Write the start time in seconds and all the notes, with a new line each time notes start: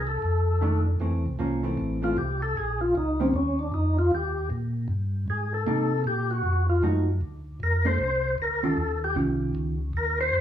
Already playing: C2
0.07 A4
0.22 F2
0.61 D#3 A3 D4
1.00 F2 E3 A3 C4
1.13 E2
1.26 C2
1.39 C2 F3 A#3 C#4
1.63 E3 A3 C4
1.77 A1
2.02 E3 A3 C4 F4
2.17 C2 G4
2.42 A4
2.56 A#1 G#4
2.81 F4
2.95 C#2 D#4
3.20 D#3 A#3 C4 C#4 G4
3.34 D#2 C#4
3.59 D4
3.72 F2 D#4
3.99 F4
4.11 D#2 G4
4.50 A#2
4.88 G2
5.28 G#2 G#4
5.54 A4
5.66 C3 A#3 D#4 G4
6.04 A#2 G4
6.31 F#4
6.43 F2
6.69 F4
6.82 F#2 F3 A3 D#4 F#4
7.21 D2
7.60 F2 A#4
7.85 A#3 D4 A4 C5
7.98 C2
8.38 D2 A#4
8.63 D#3 C#4 F4 G4 A4
8.77 D#2
9.04 G4
9.15 C2 D#3 C#4 F4 G4
9.55 C#2
9.93 D#2 A#4
10.21 C5
10.33 F2